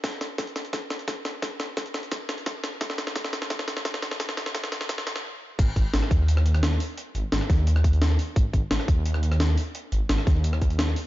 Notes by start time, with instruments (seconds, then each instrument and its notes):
0.04 kick, snare, closed hi-hat
0.21 snare, closed hi-hat
0.38 kick, snare, closed hi-hat
0.47 closed hi-hat
0.56 snare, closed hi-hat
0.65 closed hi-hat
0.73 kick, snare, closed hi-hat
0.90 snare, closed hi-hat
0.99 closed hi-hat
1.08 kick, snare, closed hi-hat
1.25 snare, closed hi-hat
1.42 kick, snare, closed hi-hat
1.60 snare, closed hi-hat
1.77 kick, snare, closed hi-hat
1.86 closed hi-hat
1.94 snare, closed hi-hat
2.03 closed hi-hat
2.12 kick, snare, closed hi-hat
2.29 snare, closed hi-hat
2.38 closed hi-hat
2.46 kick, snare, closed hi-hat
2.64 snare, closed hi-hat
2.81 kick, snare, closed hi-hat
2.90 snare
2.98 snare, closed hi-hat
3.07 snare
3.16 kick, snare, closed hi-hat
3.25 snare, closed hi-hat
3.33 snare, closed hi-hat
3.42 snare, closed hi-hat
3.50 kick, snare, closed hi-hat
3.59 snare
3.68 snare, closed hi-hat
3.77 snare, closed hi-hat
3.85 kick, snare, closed hi-hat
3.94 snare
4.02 snare, closed hi-hat
4.11 snare
4.20 kick, snare, closed hi-hat
4.29 snare
4.37 snare, closed hi-hat
4.46 snare, closed hi-hat
4.55 kick, snare, closed hi-hat
4.64 snare, closed hi-hat
4.72 snare, closed hi-hat
4.81 snare, closed hi-hat
4.89 kick, snare, closed hi-hat
4.98 snare
5.07 snare, closed hi-hat
5.16 snare, closed hi-hat
5.59 detuned saw bass G#1, kick, closed hi-hat, crash
5.76 detuned saw bass G#1, kick, closed hi-hat
5.94 detuned saw bass G#1, snare, closed hi-hat
6.02 cross-stick
6.11 detuned saw bass D#2, kick, closed hi-hat
6.28 closed hi-hat
6.37 cross-stick
6.46 closed hi-hat
6.54 cross-stick, closed hi-hat
6.63 snare, closed hi-hat
6.80 open hi-hat
6.97 closed hi-hat
7.15 detuned saw bass G#1, closed hi-hat
7.32 detuned saw bass G#1, snare, closed hi-hat
7.41 cross-stick
7.50 detuned saw bass D#2, kick, snare, closed hi-hat
7.67 closed hi-hat
7.76 cross-stick
7.84 kick, closed hi-hat
7.93 closed hi-hat
8.02 snare, closed hi-hat
8.19 open hi-hat
8.36 detuned saw bass G#1, kick, closed hi-hat
8.53 detuned saw bass G#1, kick, closed hi-hat
8.71 detuned saw bass G#1, snare, closed hi-hat
8.80 cross-stick
8.88 detuned saw bass D#2, kick, closed hi-hat
9.06 closed hi-hat
9.14 cross-stick
9.23 closed hi-hat
9.32 cross-stick, closed hi-hat
9.40 snare, closed hi-hat
9.57 open hi-hat
9.75 closed hi-hat
9.92 detuned saw bass G#1, closed hi-hat
10.09 detuned saw bass G#1, snare, closed hi-hat
10.18 cross-stick
10.27 detuned saw bass D#2, kick, snare, closed hi-hat
10.44 closed hi-hat
10.53 cross-stick
10.62 kick, closed hi-hat
10.70 closed hi-hat
10.79 snare, closed hi-hat
10.96 open hi-hat